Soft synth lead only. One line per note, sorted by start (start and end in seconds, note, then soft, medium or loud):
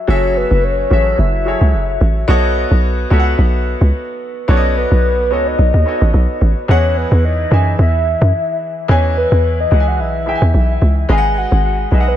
0.10 0.38 C#5 loud
0.37 0.66 B4 medium
0.64 1.20 C#5 loud
1.19 2.01 E5 loud
4.50 4.75 C#5 loud
4.77 5.34 B4 loud
5.32 5.49 C#5 loud
5.47 6.42 D#5 loud
6.70 6.99 C#5 loud
6.97 7.24 B4 medium
7.25 7.76 D#5 loud
7.80 8.58 E5 loud
8.90 9.19 C#5 loud
9.18 9.60 B4 loud
9.60 9.89 D#5 loud
9.88 10.02 F#5 loud
10.00 10.82 E5 loud
11.10 11.40 G#5 loud
11.38 11.65 F#5 loud
11.65 11.78 F#5 loud
11.93 12.10 D#5 loud
12.08 12.17 B4 medium